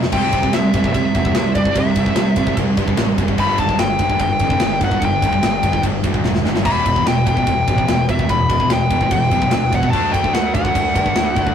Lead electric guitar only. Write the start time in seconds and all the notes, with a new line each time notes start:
0.13 G5
0.54 E5
0.93 E5
1.55 D5
1.78 E5
3.40 B5
3.59 A5
3.80 G5
4.21 G5
4.84 F#5
5.05 G5
6.66 B5
7.08 G5
7.28 G5
8.10 E5
8.30 B5
8.72 G5
9.13 G5
9.75 F#5
9.91 A5
10.13 G5
10.34 F#5
10.55 F#5